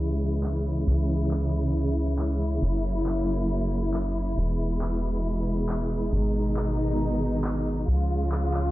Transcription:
0.00 0.85 C#2 medium
0.00 4.34 C#3 medium
0.00 2.59 E3 medium
0.00 2.58 G#3 medium
0.00 6.09 E4 medium
0.43 clap loud
0.87 2.60 C#2 medium
1.31 clap loud
2.19 clap loud
2.62 4.35 F#1 medium
2.62 4.36 F#3 medium
2.62 4.36 A#3 medium
3.06 clap loud
3.94 clap loud
4.38 6.11 E1 medium
4.38 6.11 B2 medium
4.38 6.11 E3 medium
4.38 7.85 G#3 medium
4.81 clap loud
5.69 clap loud
6.13 7.86 G#1 medium
6.13 7.86 B2 medium
6.13 7.86 D#3 medium
6.13 7.86 D#4 medium
6.57 clap loud
7.44 clap loud
7.88 8.71 C#2 medium
7.88 8.71 C#3 medium
7.88 8.71 F3 medium
7.88 8.71 G#3 medium
7.88 8.71 F4 medium
8.32 clap loud
8.54 clap medium

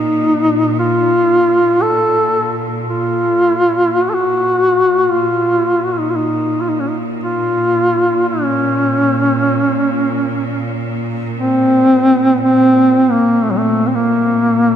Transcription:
0.00 5.13 A#2 soft
0.00 0.75 D#4 medium
0.79 1.83 F4 loud
1.82 2.64 A4 loud
2.90 4.03 F4 medium
4.01 4.11 F#4 medium
4.09 4.16 A4 medium
4.14 5.12 F#4 medium
5.10 5.85 F4 medium
5.14 14.76 A#2 soft
5.84 5.93 F#4 medium
5.92 6.01 F4 medium
6.00 6.12 D#4 medium
6.10 6.17 F4 medium
6.16 6.62 D#4 medium
6.61 6.71 F4 medium
6.69 6.81 D#4 medium
6.80 6.90 C#4 medium
6.89 6.98 D#4 medium
7.24 8.25 F4 medium
8.29 10.83 C#4 medium
11.40 12.38 C4 loud
12.41 13.12 C4 loud
13.11 13.45 A#3 medium
13.43 13.52 A3 medium
13.51 13.59 F#3 medium
13.58 13.88 A3 medium
13.87 13.96 C4 medium
13.94 14.76 A#3 medium

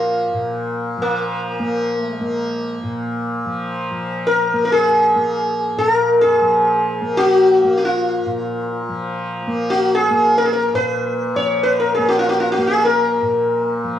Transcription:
0.00 0.33 A#2 medium
0.00 0.97 F3 medium
0.00 1.59 A#3 medium
0.00 1.07 F4 medium
0.33 2.83 A#2 medium
0.97 3.45 F3 medium
1.02 1.94 A#3 medium
1.59 2.21 A#3 medium
1.94 2.19 A3 medium
2.19 2.79 G#3 medium
2.19 4.53 A#3 medium
2.83 5.76 A#2 medium
3.45 3.91 F3 medium
3.91 6.41 F3 soft
4.27 4.64 A#4 medium
4.53 5.15 A#3 medium
4.65 4.72 A#4 medium
4.72 5.75 G#4 medium
5.15 7.01 A#3 medium
5.77 8.25 A#2 medium
5.77 5.94 A4 medium
5.94 6.21 A#4 medium
6.21 7.20 G#4 medium
6.41 8.88 F3 medium
7.01 7.64 A#3 medium
7.17 7.76 F#4 medium
7.64 9.47 A#3 medium
7.78 7.84 F#4 soft
7.85 8.79 F4 medium
8.26 10.73 A#2 medium
8.89 11.34 F3 medium
9.47 10.10 A#3 medium
9.70 9.95 F#4 medium
9.95 10.36 G#4 medium
10.10 11.98 A#3 medium
10.38 10.45 A#4 medium
10.45 10.52 G#4 medium
10.53 10.74 A#4 medium
10.73 13.21 A#2 medium
10.73 11.38 B4 medium
11.35 13.83 F3 medium
11.35 11.62 C#5 medium
11.63 11.79 B4 medium
11.80 11.93 A#4 medium
11.95 12.58 A#3 medium
11.95 12.06 G#4 medium
12.08 12.17 F#4 medium
12.19 12.29 F4 medium
12.29 12.39 F#4 medium
12.40 12.51 F4 medium
12.52 12.66 F#4 medium
12.58 13.99 A#3 medium
12.67 12.84 G#4 medium
12.85 13.99 A#4 medium
13.22 13.99 A#2 medium
13.84 13.99 F3 medium

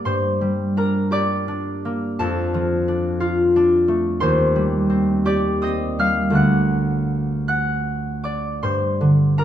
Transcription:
0.00 0.40 G3 soft
0.00 1.84 A#3 soft
0.00 1.10 G4 soft
0.00 0.77 A#4 soft
0.00 1.11 D5 soft
0.00 1.10 D6 medium
0.05 2.21 G2 soft
0.05 2.22 C5 soft
0.05 1.26 C6 medium
0.41 2.21 G3 soft
0.77 1.47 D4 soft
0.77 2.22 A#4 soft
0.77 2.21 A#5 medium
1.11 2.21 G4 soft
1.11 4.23 D5 medium
1.11 4.22 D6 medium
1.48 2.87 D4 soft
1.85 2.22 A#3 soft
2.19 4.23 F2 soft
2.19 4.24 A4 soft
2.19 4.23 A5 medium
2.54 4.23 F3 soft
2.88 3.55 D4 soft
3.20 4.23 F4 medium
3.56 4.24 D4 medium
3.88 4.23 A3 medium
4.20 6.38 D#2 medium
4.20 6.39 C5 medium
4.20 6.38 C6 medium
4.56 5.98 G3 soft
4.90 5.61 C4 soft
5.25 6.38 G4 soft
5.25 8.24 D5 medium
5.25 5.87 D6 medium
5.62 6.38 C4 soft
5.62 6.39 D#5 soft
5.62 6.38 D#6 medium
5.99 6.38 G3 soft
5.99 6.39 F5 medium
5.99 6.61 F6 medium
6.30 8.63 D2 soft
6.30 8.63 D3 soft
6.30 8.64 A3 soft
6.30 9.37 D4 soft
6.35 7.48 F#5 soft
6.35 7.47 F#6 medium
7.48 8.66 F#5 soft
7.48 8.66 F#6 medium
8.24 9.44 D5 soft
8.24 9.44 D6 medium
8.63 9.44 G2 soft
8.63 9.44 C5 soft
8.63 9.44 C6 medium
9.01 9.44 D3 soft
9.38 9.44 D4 soft
9.38 9.44 A#4 soft
9.38 9.44 A#5 medium

